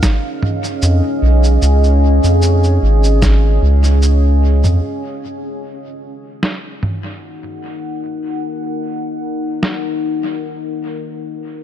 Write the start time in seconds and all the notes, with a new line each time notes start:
Already playing: C#4 D#4 G#4 A#4 D#5 F5
0.03 kick, snare, cabasa
0.43 mid tom
0.64 cabasa
0.82 F2, cabasa
1.22 B1
1.44 cabasa
1.62 C#2, cabasa
1.84 cabasa
2.24 F2, cabasa
2.42 cabasa
2.64 cabasa
2.83 G#1
3.04 cabasa
3.22 kick, snare, cabasa
3.62 C#2
3.84 cabasa
4.02 cabasa
4.64 F2, mid tom, cabasa
4.82 D#4
5.36 A#4 F#5
6.43 snare
6.83 mid tom
9.63 snare
11.22 C#4
11.34 G#4